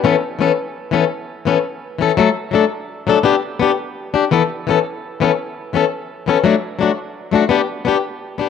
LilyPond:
\new Staff \with { instrumentName = "Steel-string acoustic guitar" } { \time 12/8 \key a \mixolydian \tempo 4. = 113 <e b cis' a'>8 r8 <e b cis' a'>8 r4 <e b cis' a'>8 r4 <e b cis' a'>8 r4 <e b cis' a'>8 | <fis a a'>8 r8 <fis a d' a'>8 r4 <fis a d' a'>8 <b d' g'>8 r8 <b d' g'>8 r4 <d' g'>8 | <e b a'>8 r8 <e b cis' a'>8 r4 <e b cis' a'>8 r4 <e b cis' a'>8 r4 <e b cis' a'>8 | <fis a d' fis'>8 r8 <fis a d' fis'>8 r4 <fis a d' fis'>8 <b d' g'>8 r8 <b d' g'>8 r4 <b d' g'>8 | }